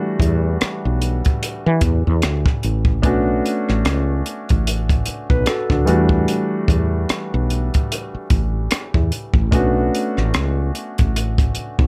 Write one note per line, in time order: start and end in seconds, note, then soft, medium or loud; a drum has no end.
0.00 2.58 E3 medium
0.00 2.59 G3 medium
0.00 2.59 A3 medium
0.00 2.60 D4 medium
0.00 2.60 F#4 medium
0.20 0.56 E2 medium
0.20 kick medium
0.20 closed hi-hat medium
0.61 muted fretless electric bass stroke soft
0.61 cross-stick medium
0.61 closed hi-hat medium
0.85 1.21 B1 medium
1.02 closed hi-hat medium
1.25 kick medium
1.25 closed hi-hat soft
1.43 closed hi-hat medium
1.66 1.81 E3 medium
1.81 2.03 E2 medium
1.81 kick medium
1.81 closed hi-hat medium
2.07 2.21 E2 medium
2.22 2.44 D2 medium
2.22 cross-stick medium
2.22 closed hi-hat medium
2.46 kick medium
2.46 cross-stick soft
2.63 3.04 A1 medium
2.63 closed hi-hat medium
2.85 kick medium
3.02 3.40 B1 medium
3.02 5.83 A3 medium
3.02 5.83 B3 medium
3.02 5.03 C#4 medium
3.02 5.69 D4 medium
3.02 5.03 F#4 medium
3.02 kick medium
3.02 closed hi-hat medium
3.46 closed hi-hat medium
3.69 3.84 A1 medium
3.69 cross-stick soft
3.85 4.21 C#2 medium
3.85 cross-stick medium
3.85 closed hi-hat medium
4.26 closed hi-hat medium
4.49 5.01 A1 medium
4.49 kick medium
4.49 closed hi-hat soft
4.67 closed hi-hat medium
4.89 kick medium
4.89 closed hi-hat soft
5.06 muted fretless electric bass stroke soft
5.06 closed hi-hat medium
5.30 5.45 B1 medium
5.30 5.46 B4 medium
5.30 kick medium
5.46 5.69 F#4 soft
5.46 5.69 A4 medium
5.46 cross-stick loud
5.46 closed hi-hat medium
5.70 5.85 D2 medium
5.70 5.86 D4 soft
5.70 5.88 F#4 soft
5.70 kick medium
5.70 cross-stick soft
5.85 6.24 E2 medium
5.85 9.07 E3 medium
5.85 9.07 G3 medium
5.85 9.07 A3 medium
5.85 9.08 D4 medium
5.85 closed hi-hat medium
5.89 9.09 F#4 medium
6.09 kick medium
6.28 closed hi-hat medium
6.68 7.05 E2 medium
6.68 kick medium
6.68 closed hi-hat medium
7.09 muted fretless electric bass stroke soft
7.09 cross-stick medium
7.09 closed hi-hat medium
7.34 7.69 B1 medium
7.50 closed hi-hat medium
7.74 kick medium
7.74 closed hi-hat soft
7.92 closed hi-hat medium
8.14 muted fretless electric bass stroke soft
8.30 8.67 A1 medium
8.30 kick medium
8.30 closed hi-hat soft
8.71 cross-stick medium
8.71 closed hi-hat medium
8.94 9.10 E2 medium
8.94 kick medium
9.12 closed hi-hat medium
9.34 9.50 A1 medium
9.34 kick medium
9.51 9.89 B1 medium
9.51 11.87 A3 medium
9.51 11.87 B3 medium
9.51 11.87 C#4 medium
9.51 11.87 D4 medium
9.51 11.87 F#4 medium
9.51 kick medium
9.51 closed hi-hat medium
9.95 closed hi-hat medium
10.17 10.32 A1 medium
10.17 cross-stick soft
10.34 10.70 C#2 medium
10.34 cross-stick loud
10.34 closed hi-hat medium
10.75 closed hi-hat medium
10.98 11.50 A1 medium
10.98 kick medium
10.98 closed hi-hat soft
11.16 closed hi-hat medium
11.38 kick medium
11.38 closed hi-hat soft
11.55 muted fretless electric bass stroke soft
11.55 closed hi-hat medium
11.79 11.87 B1 medium
11.79 kick medium